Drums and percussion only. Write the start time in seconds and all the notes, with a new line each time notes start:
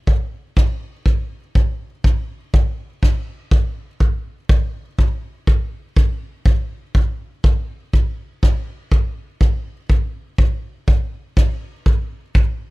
0.07 kick
0.57 kick
1.06 kick
1.55 kick
2.04 kick
2.54 kick
3.03 kick
3.51 kick
4.00 kick
4.49 kick
4.99 kick
5.47 kick
5.96 kick
6.46 kick
6.95 kick
7.44 kick
7.93 kick
8.43 kick
8.92 kick
9.41 kick
9.90 kick
10.38 kick
10.88 kick
11.37 kick
11.86 kick
12.35 kick